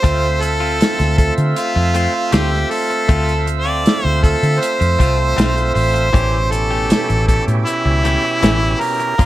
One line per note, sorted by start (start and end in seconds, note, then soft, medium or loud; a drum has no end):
0.00 6.09 A3 medium
0.00 0.27 A3 medium
0.00 6.10 C4 medium
0.00 0.27 C4 medium
0.00 0.43 C5 loud
0.00 6.10 E5 medium
0.00 kick loud
0.04 0.80 D2 loud
0.04 0.27 F4 medium
0.04 6.11 F4 medium
0.04 closed hi-hat medium
0.41 1.17 A4 loud
0.41 muted clean electric guitar stroke soft
0.41 closed hi-hat medium
0.60 0.79 C4 soft
0.60 0.80 F4 soft
0.80 muted clean electric guitar stroke soft
0.80 snare loud
0.80 closed hi-hat medium
0.99 1.30 D2 medium
0.99 muted clean electric guitar stroke soft
0.99 snare soft
0.99 closed hi-hat soft
1.18 1.34 A4 medium
1.18 kick medium
1.18 closed hi-hat medium
1.38 1.53 D3 medium
1.38 closed hi-hat soft
1.56 2.34 F4 loud
1.56 closed hi-hat medium
1.76 2.06 F2 medium
1.76 muted clean electric guitar stroke soft
1.94 2.14 A3 medium
1.94 2.14 C4 medium
1.94 2.13 F4 medium
1.94 closed hi-hat soft
2.14 muted clean electric guitar stroke soft
2.32 2.63 D2 medium
2.32 2.52 A3 medium
2.32 2.52 C4 medium
2.32 2.50 F4 medium
2.32 2.72 G4 medium
2.32 snare loud
2.32 closed hi-hat medium
2.52 muted clean electric guitar stroke soft
2.52 snare soft
2.70 3.47 A4 medium
2.70 muted clean electric guitar stroke soft
2.70 open hi-hat medium
2.90 muted clean electric guitar stroke soft
2.90 closed hi-hat soft
3.09 3.85 D2 medium
3.09 3.32 A3 medium
3.09 3.32 C4 medium
3.09 3.33 F4 medium
3.09 kick loud
3.09 closed hi-hat medium
3.29 closed hi-hat soft
3.46 muted clean electric guitar stroke soft
3.46 closed hi-hat medium
3.60 4.06 D5 loud
3.65 3.84 C4 soft
3.65 3.85 F4 soft
3.84 muted clean electric guitar stroke soft
3.84 snare loud
3.84 closed hi-hat medium
4.04 4.35 D2 medium
4.04 4.24 C5 loud
4.04 muted clean electric guitar stroke soft
4.23 4.62 A4 medium
4.23 kick medium
4.23 closed hi-hat medium
4.43 4.58 D3 medium
4.43 closed hi-hat soft
4.60 5.74 C5 medium
4.60 closed hi-hat medium
4.80 4.96 F2 medium
4.80 muted clean electric guitar stroke soft
4.80 closed hi-hat soft
4.99 5.34 C2 medium
4.99 5.19 A3 medium
4.99 5.18 C4 medium
4.99 5.17 F4 medium
4.99 kick medium
4.99 closed hi-hat medium
5.18 muted clean electric guitar stroke soft
5.37 5.72 B1 medium
5.37 5.57 A3 medium
5.37 5.56 C4 medium
5.37 5.55 F4 medium
5.37 snare loud
5.37 closed hi-hat medium
5.56 muted clean electric guitar stroke soft
5.56 closed hi-hat soft
5.74 6.10 A1 medium
5.74 6.52 C5 loud
5.74 muted clean electric guitar stroke soft
5.74 open hi-hat medium
5.94 muted clean electric guitar stroke soft
5.94 closed hi-hat soft
6.12 6.91 A1 medium
6.12 9.14 B2 medium
6.12 6.37 E3 medium
6.12 6.37 A3 medium
6.12 9.15 C#4 medium
6.12 6.37 C#4 medium
6.12 9.15 E4 medium
6.12 6.37 G4 medium
6.12 9.16 G4 medium
6.12 kick loud
6.12 closed hi-hat medium
6.51 7.27 A4 loud
6.51 muted clean electric guitar stroke soft
6.51 closed hi-hat medium
6.70 6.89 A3 soft
6.70 6.89 C#4 soft
6.70 6.90 G4 soft
6.89 muted clean electric guitar stroke soft
6.89 snare loud
6.89 closed hi-hat medium
7.09 7.40 A1 medium
7.09 muted clean electric guitar stroke soft
7.09 closed hi-hat soft
7.28 7.44 A4 medium
7.28 kick medium
7.28 closed hi-hat medium
7.48 7.63 A2 medium
7.48 closed hi-hat soft
7.66 8.82 E4 medium
7.66 closed hi-hat medium
7.85 8.16 C#2 medium
7.85 muted clean electric guitar stroke soft
8.04 8.24 E3 medium
8.04 8.23 A3 medium
8.04 8.23 C#4 medium
8.04 8.23 G4 medium
8.04 closed hi-hat medium
8.24 muted clean electric guitar stroke soft
8.42 8.73 A1 medium
8.42 8.62 E3 medium
8.42 8.62 A3 medium
8.42 8.61 C#4 medium
8.42 8.61 G4 medium
8.42 snare loud
8.42 closed hi-hat medium
8.62 muted clean electric guitar stroke soft
8.81 9.26 A#4 loud
8.81 muted clean electric guitar stroke soft
8.81 open hi-hat medium
9.00 muted clean electric guitar stroke soft
9.00 closed hi-hat soft
9.18 9.26 G1 loud
9.18 9.26 F3 medium
9.18 9.26 A#3 medium
9.18 9.26 D4 medium
9.18 9.26 F4 medium
9.18 9.26 A#4 medium
9.18 kick loud
9.18 closed hi-hat medium